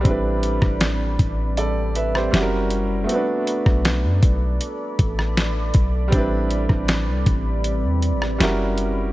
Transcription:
Already playing: D5 B5
0.01 G3 C4
0.05 A1 G3 C4 D4 E4, kick, closed hi-hat
0.11 B4
0.43 closed hi-hat
0.62 A1, kick, cross-stick
0.81 snare, closed hi-hat
1.19 A1, kick, closed hi-hat
1.57 A4 D5, closed hi-hat
1.95 B4 E5, closed hi-hat
2.15 G4 C5, cross-stick
2.31 F#1 G3 C#4 E4 F#4, snare, closed hi-hat
2.36 G4
2.42 A#4
2.70 closed hi-hat
3.04 A3 B3
3.09 C4 F#4 A4 D5 B5, closed hi-hat
3.14 D4 B4
3.47 closed hi-hat
3.66 B1, kick, cross-stick
3.85 snare, closed hi-hat
4.04 F#2
4.23 B1, kick, closed hi-hat
4.61 closed hi-hat
4.99 A1, kick, closed hi-hat
5.18 cross-stick
5.37 snare, closed hi-hat
5.74 B1, kick, closed hi-hat
6.08 G3 C4
6.13 A1 G3 C4 D4 E4, kick, closed hi-hat
6.18 B4
6.51 closed hi-hat
6.69 A1, kick, cross-stick
6.88 snare, closed hi-hat
7.07 C2
7.26 A1, kick, closed hi-hat
7.64 closed hi-hat
7.84 E2
8.02 closed hi-hat
8.12 A1
8.22 cross-stick
8.38 F#1 G3 C#4 E4 F#4, snare, closed hi-hat
8.43 A#4
8.77 closed hi-hat

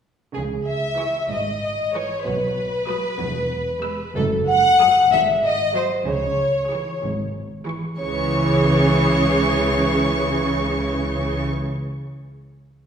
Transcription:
0.33 C#2 C#3 G#4
0.66 E5
0.98 E3 G#4 C#6
1.30 G#1 G#2 D#5
1.94 E3 G#4 C#5 C#6
2.18 C#5
2.25 B1 B2 B4
2.88 F#3 B4 D#6
3.20 E1 E2
3.83 G#3 B4 E6
4.16 F#1 F#2 A4
4.48 F#5
4.80 F#3 A4 D#6
5.11 G#1 G#2 E5
5.43 D#5
5.75 F#3 G#4 C5 C6
6.06 C#2 C#3 C#5
6.70 E3 G#4 C#6
7.02 G#1 G#2
7.67 E3 G#4 C#6
7.98 C#2 C#3 E3 G#4 C#5 C#6

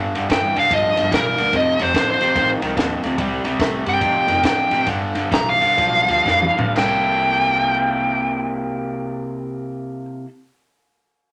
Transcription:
Already playing: G1 G2 D3
0.15 G1 G2 D3, snare, ride
0.29 G1 G2 E3 G5, kick, snare, ride
0.56 C2 G2 D3 F5, snare, ride
0.71 G1 G2 F3 D#5, kick, ride
0.97 G1 G2 F3, snare, ride
1.11 B1 G2 E3 A#4, kick, snare, ride
1.37 D2 G2 D3, snare, ride
1.52 F1 F2 C3 D#5, kick, ride
1.79 F1 F2 C3 C5, snare, ride
1.94 A1 F2 D3, kick, snare, ride
2.10 C5
2.21 A1 F2 C3, snare, ride
2.35 A1 F2 D#3, kick, snare, ride
2.61 C2 F2 D#3, snare, ride
2.76 D#2 F2 D3, kick, snare, ride
3.03 D2 F2 C3, snare, ride
3.18 C2 C3 G3, kick, ride
3.44 C2 C3 G3, snare, ride
3.59 C2 C3 A3, kick, snare, ride
3.86 G2 C3 G3 G5, snare, ride
4.01 F1 F2 C3, kick, ride
4.28 F1 F2 D#3, snare, ride
4.43 A1 F2 D3 G5, kick, snare, ride
4.71 A1 F2 C3, snare, ride
4.86 G1 G2 D3, kick, snare, ride
5.15 G1 G2 D3, snare, ride
5.31 B1 G2 E3 A#5, kick, snare, ride
5.49 F5
5.60 B1 G2 D3, snare, ride
5.77 B1 G2 F3, kick, ride
6.08 D2 G2 F3, snare, ride
6.26 F2 G2 E3, kick, snare
6.42 mid tom
6.57 D2 G2 D3, floor tom
6.75 C2 C3 A#3 E4 A4 G5, snare, crash

